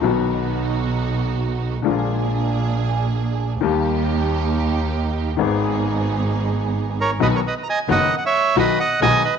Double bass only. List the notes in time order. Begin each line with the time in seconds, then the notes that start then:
0.04 B1
1.84 A#1
3.61 D#2
5.39 G#1
7.21 B1
7.89 F#1
8.56 B1
9.00 B1